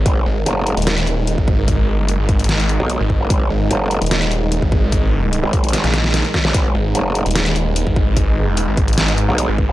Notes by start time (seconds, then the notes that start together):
Already playing: G#3 D#4 A#4
0.06 G#1 D#5, kick, closed hi-hat
0.26 G#1
0.46 F#1, closed hi-hat
0.67 closed hi-hat
0.77 D#1, closed hi-hat
0.82 closed hi-hat
0.87 snare, closed hi-hat
0.98 closed hi-hat
1.07 closed hi-hat
1.27 closed hi-hat
1.38 G#1, kick
1.48 kick
1.68 kick, closed hi-hat
1.94 G1
2.08 closed hi-hat
2.19 G#1
2.29 kick, closed hi-hat
2.39 closed hi-hat
2.44 closed hi-hat
2.49 snare, closed hi-hat
2.60 closed hi-hat
2.69 closed hi-hat
2.80 B1
2.90 closed hi-hat
3.00 G#1
3.10 kick
3.21 F#1
3.30 G#1, kick, closed hi-hat
3.50 G#1
3.71 F#1, closed hi-hat
3.91 closed hi-hat
4.02 D#1, closed hi-hat
4.06 closed hi-hat
4.11 snare, closed hi-hat
4.22 closed hi-hat
4.31 closed hi-hat
4.52 closed hi-hat
4.62 G#1, kick
4.72 kick
4.92 kick, closed hi-hat
5.33 closed hi-hat
5.43 G#1
5.53 kick, closed hi-hat
5.64 closed hi-hat
5.69 closed hi-hat
5.73 snare, closed hi-hat
5.84 A#1, snare, closed hi-hat
5.94 snare, closed hi-hat
6.04 snare
6.14 snare, closed hi-hat
6.25 closed hi-hat
6.34 kick, snare
6.45 A#1, snare
6.54 G#1 G#4 B4, kick, closed hi-hat
6.75 G#1
6.95 F#1, closed hi-hat
7.15 closed hi-hat
7.26 D#1, closed hi-hat
7.31 closed hi-hat
7.36 snare, closed hi-hat
7.46 closed hi-hat
7.56 closed hi-hat
7.76 closed hi-hat
7.87 G#1, kick
7.96 kick
8.17 kick, closed hi-hat
8.57 closed hi-hat
8.68 G#1
8.77 kick, closed hi-hat
8.88 closed hi-hat
8.93 closed hi-hat
8.98 snare, closed hi-hat
9.08 closed hi-hat
9.18 closed hi-hat
9.29 B1
9.38 closed hi-hat
9.49 G#1
9.58 kick
9.69 F#1